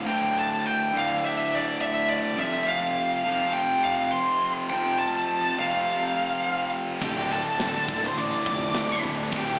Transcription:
0.05 distorted electric guitar D2 A2 D3, lead electric guitar G5
0.39 lead electric guitar A5
0.67 lead electric guitar G5
0.92 distorted electric guitar D2 A2 D3
0.97 lead electric guitar F5
1.25 lead electric guitar E5
1.55 lead electric guitar D5
1.81 lead electric guitar E5
2.09 lead electric guitar D5
2.37 distorted electric guitar F2 C3 F3, lead electric guitar E5
2.67 lead electric guitar F5
3.25 distorted electric guitar F2 C3 F3
3.53 lead electric guitar G5
3.83 lead electric guitar F5
4.11 lead electric guitar C6
4.70 distorted electric guitar F2 C3 F3, lead electric guitar G5
4.99 lead electric guitar A5
5.59 distorted electric guitar F2 C3 F3, lead electric guitar F5
7.01 picked electric bass D1, distorted electric guitar D2 A2 D3, lead electric guitar G4 G5, kick, crash
7.31 lead electric guitar A4 A5, ride
7.59 picked electric bass D1, snare, ride
7.88 picked electric bass D1, distorted electric guitar D2 A2 D3, kick, ride
8.03 lead electric guitar C5 C6, snare
8.17 picked electric bass A1, lead electric guitar D6, ride
8.21 lead electric guitar D5
8.46 picked electric bass F1, kick, ride
8.75 picked electric bass D1, snare, ride
9.03 picked electric bass D1, distorted electric guitar D2 A2 D3, ride
9.32 picked electric bass D1, distorted electric guitar D2 A2 D3, kick, ride
9.36 lead electric guitar G4 G5

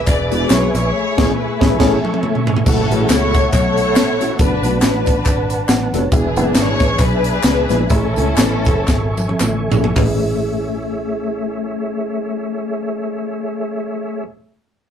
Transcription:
Already playing: tonewheel organ B4 E5 G#5 D6
0.07 fingered electric bass E1, string section G#4 B4 D5, kick, clap, closed hi-hat, tambourine
0.31 tine electric piano G#3 B3 D4 E4 F#4, string section D5, closed hi-hat, tambourine
0.50 fingered electric bass B1, string section C#5, snare, clap, closed hi-hat, tambourine
0.75 fingered electric bass A#1, string section E4 G#4 C#5, snare, closed hi-hat, tambourine
0.93 tonewheel organ A3 C#6
1.17 fingered electric bass A1, tine electric piano A2 A3 C#4 E4 G#4 A4, kick, snare, crash
1.37 string section E4 G#4 B4
1.61 fingered electric bass A1, tine electric piano A3 C#4 E4 G#4 A4, kick, snare
1.80 fingered electric bass A1, tine electric piano A3 C#4 E4 G#4 A4, string section C#4 E4 A4, kick, snare, crash
2.05 high tom
2.14 high tom
2.23 mid tom
2.35 mid tom
2.47 floor tom
2.57 floor tom
2.66 fingered electric bass F#1, tine electric piano A3 C#4 E4 F#4 A4, tonewheel organ A3 E5 F#5 C#6, string section C#4 E4 A4, kick, crash, tambourine
2.91 fingered electric bass A1, tine electric piano G#3 C#4 E4 F#4 G#4, closed hi-hat, tambourine
2.96 tine electric piano A3
3.10 fingered electric bass C#2, string section E4 A4 C#5, snare, clap, closed hi-hat, tambourine
3.34 kick, snare, closed hi-hat, tambourine
3.53 fingered electric bass B1, string section E4 A4 C#5, kick, clap, closed hi-hat, tambourine
3.78 closed hi-hat, tambourine
3.96 fingered electric bass A1, snare, clap, closed hi-hat, tambourine
4.21 tine electric piano A3 C#4 E4 F#4 A4, snare, closed hi-hat, tambourine
4.39 fingered electric bass F#1, tine electric piano A3 B3 D4 F#4 A4, string section D4 B4, tonewheel organ B4 A5, kick, closed hi-hat, tambourine
4.63 fingered electric bass B1, tine electric piano A3 B3 D4 F#4 B4, closed hi-hat, tambourine
4.82 fingered electric bass A1, string section D4 B4, snare, clap, closed hi-hat, tambourine
5.06 kick, closed hi-hat, tambourine
5.25 fingered electric bass G#1, kick, clap, closed hi-hat, tambourine
5.50 tine electric piano B5, closed hi-hat, tambourine
5.55 tine electric piano A5
5.69 fingered electric bass A1, tine electric piano F#5, snare, clap, closed hi-hat, tambourine
5.94 fingered electric bass F1, tine electric piano A3 B3 D4 F#4 A4, snare, closed hi-hat, tambourine
5.98 tine electric piano C#5
6.12 fingered electric bass E1, tine electric piano E3 G#3 B3 D4 E4 G#4, string section B3 D4 G#4, tonewheel organ E5 G#5, kick, closed hi-hat, tambourine
6.36 fingered electric bass F#1, tine electric piano G#3 B3 D4 E4 B4, closed hi-hat, tambourine
6.55 fingered electric bass G#1, string section G#4 C#5, snare, clap, closed hi-hat, tambourine
6.80 fingered electric bass A1, kick, snare, closed hi-hat, tambourine
6.99 fingered electric bass B1, string section D4 G#4 B4, kick, clap, closed hi-hat, tambourine
7.24 closed hi-hat, tambourine
7.43 fingered electric bass C#2, snare, clap, closed hi-hat, tambourine
7.69 fingered electric bass A#1, tine electric piano G#3 B3 D4 E4 B4, snare, closed hi-hat, tambourine
7.90 fingered electric bass A1, tine electric piano A2 A3 C#4 E4 G#4 A4, string section C#4 E4 A4, tonewheel organ A4 E5 C#6, kick, closed hi-hat, tambourine
8.16 fingered electric bass C#2, tine electric piano A3 C4 E4 A4 G#5, closed hi-hat, tambourine
8.23 tine electric piano C#4
8.37 fingered electric bass A1, snare, clap, closed hi-hat, tambourine
8.65 fingered electric bass F#1, kick, closed hi-hat, tambourine
8.88 fingered electric bass G#1, kick, snare, clap, tambourine
9.17 high tom, tambourine
9.29 high tom
9.40 fingered electric bass A1, clap, mid tom, tambourine
9.71 fingered electric bass A#1, tine electric piano A3 C#4 E4 G#4 A4, floor tom, tambourine
9.84 floor tom
9.95 fingered electric bass A1, tine electric piano A1 A3 C#4 E4 G#4, tonewheel organ A3 G#4 C#5 E5, kick, clap, floor tom, open hi-hat

